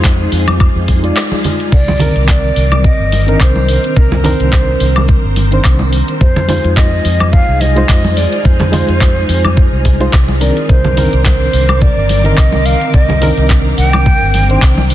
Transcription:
Already playing: fingered electric bass F2, reed electric piano G#3 D#4 F4 C5, string machine D#4 F4 G#4
0.04 kick, clap, closed hi-hat, high conga
0.32 fingered electric bass F2, open hi-hat
0.48 closed hi-hat, high conga, high woodblock
0.60 kick, closed hi-hat, high woodblock
0.76 fingered electric bass F2
0.88 kick, open hi-hat, high conga
1.03 reed electric piano G#3 D#4 F4 D5, closed hi-hat
1.16 clap, closed hi-hat, high woodblock
1.32 high conga
1.44 open hi-hat, low conga
1.60 closed hi-hat
1.72 fingered electric bass C2, string machine C4 A#4 D6, flute D5, kick, closed hi-hat, crash
1.88 high conga, low conga
1.99 reed electric piano D3 D#3 C4 A#4, open hi-hat, low conga
2.16 fingered electric bass C2, closed hi-hat
2.28 flute D5, kick, clap, closed hi-hat, high conga
2.56 fingered electric bass C2, open hi-hat
2.72 closed hi-hat, high conga, high woodblock
2.84 flute D#5, kick, closed hi-hat
3.00 fingered electric bass G1
3.12 open hi-hat, high conga
3.27 reed electric piano D#3 C4 D4 A#4, closed hi-hat
3.40 fingered electric bass C2, flute C5, kick, clap, closed hi-hat, high woodblock
3.56 high conga
3.68 open hi-hat
3.84 closed hi-hat
3.96 fingered electric bass C2, flute A#4, string machine C5, kick, closed hi-hat
4.12 high conga, low conga
4.24 reed electric piano D#3 C4 D4 A#4, flute C5, open hi-hat, low conga
4.40 fingered electric bass C2, closed hi-hat
4.52 kick, clap, closed hi-hat, high conga
4.80 fingered electric bass C2, open hi-hat
4.96 closed hi-hat, high conga, high woodblock
5.08 kick, closed hi-hat
5.24 fingered electric bass G1
5.36 open hi-hat, high conga
5.51 reed electric piano D#3 C4 D4 C5, closed hi-hat
5.64 fingered electric bass C2, kick, clap, closed hi-hat, high woodblock
5.79 high conga
5.93 open hi-hat
6.08 closed hi-hat
6.21 fingered electric bass F2, string machine D#4 F4 G#4, flute C5, kick, closed hi-hat
6.36 high conga, low conga
6.48 reed electric piano G#3 D#4 F4 C5, open hi-hat, low conga
6.64 fingered electric bass F2, closed hi-hat
6.77 flute D#5, kick, clap, closed hi-hat, high conga
7.05 fingered electric bass F2, open hi-hat
7.20 closed hi-hat, high conga, high woodblock
7.32 flute F5, kick, closed hi-hat
7.48 fingered electric bass C2
7.61 flute D#5, open hi-hat, high conga
7.76 reed electric piano G#3 D#4 F4 C5, closed hi-hat
7.89 fingered electric bass F2, kick, clap, closed hi-hat, high woodblock
8.04 high conga
8.17 flute D5, open hi-hat
8.32 closed hi-hat
8.45 fingered electric bass F2, flute C5, kick, closed hi-hat
8.60 high conga, low conga
8.72 reed electric piano G#3 D#4 F4 C5, open hi-hat, low conga
8.88 fingered electric bass F2, closed hi-hat
9.00 kick, clap, closed hi-hat, high conga
9.29 fingered electric bass F2, open hi-hat
9.45 closed hi-hat, high conga, high woodblock
9.57 kick, closed hi-hat
9.73 fingered electric bass C2
9.85 kick, open hi-hat, high conga
10.00 reed electric piano G#3 D#4 F4 C5, closed hi-hat
10.13 fingered electric bass C2, kick, clap, closed hi-hat, high woodblock
10.28 high conga
10.40 reed electric piano D#3 C4 D4 A#4, flute D5, open hi-hat
10.57 closed hi-hat
10.69 fingered electric bass C2, string machine C4 A#4 D6, flute C5, kick, closed hi-hat
10.84 high conga, low conga
10.96 reed electric piano D#3 C4 D4 A#4, open hi-hat, low conga
11.13 fingered electric bass C2, closed hi-hat
11.25 flute C5, kick, clap, closed hi-hat, high conga
11.53 fingered electric bass C2, open hi-hat
11.69 closed hi-hat, high conga, high woodblock
11.81 flute D5, kick, closed hi-hat
11.97 fingered electric bass G1
12.09 open hi-hat, high conga
12.24 reed electric piano D3 D#3 C4 A#4, flute D#5, closed hi-hat
12.37 fingered electric bass C2, kick, clap, closed hi-hat, high woodblock
12.52 high conga
12.66 flute F5, open hi-hat
12.81 closed hi-hat
12.93 fingered electric bass C2, flute D#5, kick, closed hi-hat
13.09 high conga, low conga
13.21 reed electric piano D#3 C4 D4 A#4, open hi-hat, low conga
13.37 fingered electric bass C2, closed hi-hat
13.50 kick, clap, closed hi-hat, high conga
13.78 fingered electric bass C2, flute G5, open hi-hat
13.93 closed hi-hat, high conga, high woodblock
14.06 kick, closed hi-hat
14.22 fingered electric bass G1
14.34 open hi-hat, high conga
14.49 reed electric piano D#3 C4 D4 C5, closed hi-hat
14.62 fingered electric bass C2, kick, clap, closed hi-hat, high woodblock
14.77 high conga
14.90 open hi-hat

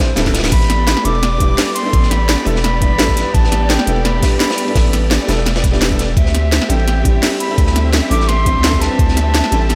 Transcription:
0.00 grand piano C5
0.16 808-style bass D1, grand piano G3 C4 D4 E4 A4, snare, closed hi-hat, ride
0.26 kick, snare
0.32 grand piano G3 B3 D4 E4, snare, closed hi-hat, ride
0.36 grand piano B4, snare, ride
0.44 snare, ride
0.47 snare, ride
0.52 808-style bass A1, string section B3 G4 D5, flute B5, kick, closed hi-hat, ride, crash
0.61 snare
0.70 snare, closed hi-hat, ride
0.87 snare, closed hi-hat, ride
0.97 snare
1.04 808-style bass E1, grand piano G3 B3 D4 E4 A4, flute D6, closed hi-hat, ride
1.15 ride
1.23 snare, closed hi-hat, ride
1.38 808-style bass E1, grand piano G3 B3 D4 E4, kick, closed hi-hat, ride
1.42 grand piano G4
1.58 snare, closed hi-hat, open hi-hat
1.75 flute C6, closed hi-hat, ride
1.83 grand piano G3 B3 D4 E4, ride
1.87 grand piano A4
1.93 808-style bass A1, kick, closed hi-hat, ride
2.03 snare
2.11 flute B5, snare, closed hi-hat, ride
2.29 snare, closed hi-hat, ride
2.45 808-style bass E1, grand piano G3 B3 D4 E4 A4, open hi-hat, ride
2.56 snare
2.63 flute B5, snare, closed hi-hat, ride
2.80 grand piano G3 B3 D4 E4 D5, kick, closed hi-hat, ride
2.91 808-style bass A1
2.98 grand piano G3 B3 D4 E4 A4, snare, closed hi-hat, ride
3.09 kick, snare
3.15 grand piano G3 B3 D4 E4, snare, closed hi-hat, ride
3.19 grand piano B4
3.34 808-style bass A1, flute A5, kick, closed hi-hat, ride
3.44 snare
3.52 snare, closed hi-hat, ride
3.70 flute G5, snare, closed hi-hat, ride
3.79 snare
3.86 808-style bass E1, grand piano G3 B3 D4 E4 A4, closed hi-hat, ride
3.96 ride
4.05 flute B5, snare, closed hi-hat, ride
4.20 grand piano G3 B3 D4 E4, kick, snare, closed hi-hat, open hi-hat
4.25 grand piano G4
4.40 flute B5, snare, closed hi-hat, ride
4.49 snare, open hi-hat
4.58 closed hi-hat
4.65 grand piano G3 B3 D4 E4, ride
4.69 grand piano A4
4.75 808-style bass A1, kick, snare, closed hi-hat, open hi-hat
4.93 snare, closed hi-hat, ride
5.11 snare, closed hi-hat, ride
5.27 808-style bass E1, grand piano G3 B3 D4 E4 A4, snare, open hi-hat, ride
5.37 snare
5.45 snare, closed hi-hat, ride
5.56 snare, ride
5.63 808-style bass E1, kick, snare, closed hi-hat
5.72 grand piano G3 B3 D4 E4 G4, snare, ride
5.81 snare, closed hi-hat, ride
5.90 grand piano G3 B3 D4 E4 A4, kick, snare
5.99 snare, closed hi-hat, ride
6.17 808-style bass D2, string section C4 G4 E5, flute E5, kick, closed hi-hat, ride
6.26 snare
6.34 snare, closed hi-hat, ride
6.52 snare, closed hi-hat, ride
6.62 snare
6.69 808-style bass A1, grand piano G3 C4 D4 E4 A4, flute G5, closed hi-hat, ride
6.79 ride
6.87 snare, closed hi-hat, ride
7.03 808-style bass A1, grand piano G3 C4 D4 E4, kick, closed hi-hat, ride
7.07 grand piano G4
7.23 snare, closed hi-hat, open hi-hat
7.40 flute B5, closed hi-hat, ride
7.47 grand piano G3 C4 D4 E4, ride
7.52 grand piano A4
7.58 808-style bass D2, kick, closed hi-hat, ride
7.67 snare
7.76 snare, closed hi-hat, ride
7.93 snare, closed hi-hat, ride
8.10 808-style bass A1, grand piano G3 C4 D4 E4 A4, flute D6, open hi-hat, ride
8.20 snare
8.28 flute C6, snare, closed hi-hat, ride
8.45 grand piano G3 C4 D4 E4 C5, kick, closed hi-hat, ride
8.56 808-style bass D2
8.62 grand piano G3 C4 D4 E4 A4, snare, closed hi-hat, ride
8.73 kick, snare
8.79 grand piano G3 C4 D4 E4, flute A5, snare, closed hi-hat, ride
8.83 grand piano B4
8.99 808-style bass D2, kick, closed hi-hat, ride
9.08 snare
9.17 snare, closed hi-hat, ride
9.34 snare, closed hi-hat, ride
9.44 snare
9.51 808-style bass A1, grand piano G3 C4 D4 E4 A4, closed hi-hat, ride
9.62 ride
9.69 snare, closed hi-hat, ride

